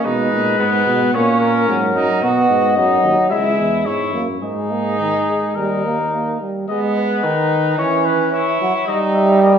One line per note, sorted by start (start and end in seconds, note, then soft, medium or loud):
0.04 0.32 B2 medium
0.04 1.13 G#3 medium
0.04 0.59 D#4 medium
0.04 1.12 B4 medium
0.32 0.59 A#2 medium
0.59 0.86 G#2 medium
0.59 1.16 B3 medium
0.86 1.16 B2 medium
1.13 1.70 A#2 medium
1.13 1.67 A#3 medium
1.13 1.79 C#4 medium
1.13 1.40 C#5 medium
1.41 2.21 A#4 medium
1.68 1.95 G#2 medium
1.68 2.21 F#3 medium
1.96 2.08 F#2 medium
1.96 2.24 D#4 medium
2.21 2.49 B2 medium
2.21 2.78 B3 loud
2.21 2.76 F#4 medium
2.21 3.28 D#5 medium
2.50 2.78 G#2 medium
2.76 3.03 F#2 medium
2.76 3.32 F#3 medium
2.76 3.30 D#4 medium
3.04 3.16 D#2 medium
3.30 3.60 C#2 medium
3.30 4.14 G#3 medium
3.30 3.85 E4 medium
3.30 3.87 E5 medium
3.58 3.88 E2 medium
3.86 4.15 G#2 medium
3.86 4.22 E4 medium
3.86 4.22 C#5 medium
4.14 4.42 F#2 medium
4.14 4.27 A#3 medium
4.42 5.25 G#2 medium
4.42 4.72 G#3 medium
4.42 5.52 D#4 medium
4.42 5.57 G#4 medium
4.70 4.99 A#3 medium
5.00 5.12 D#3 medium
5.28 5.58 G#3 medium
5.55 6.36 D#2 medium
5.55 5.84 G3 medium
5.55 6.39 D#4 medium
5.55 6.40 A#4 medium
5.85 5.97 A#3 medium
6.13 6.40 A#3 medium
6.41 6.68 G3 medium
6.68 7.20 G#3 loud
6.68 7.26 B3 medium
6.68 6.80 D#5 medium
6.96 7.76 B4 medium
7.24 7.77 D#3 loud
7.24 7.80 D#4 medium
7.78 8.59 E3 loud
7.78 8.33 C#4 medium
7.78 8.07 C#5 medium
8.05 8.31 B4 medium
8.32 8.87 E4 medium
8.32 8.86 C#5 medium
8.61 8.73 F#3 medium
8.87 9.59 G3 loud
8.87 9.41 D#4 medium
8.87 8.99 D#5 medium
9.14 9.41 E5 medium
9.42 9.59 A#3 medium
9.42 9.54 D#5 medium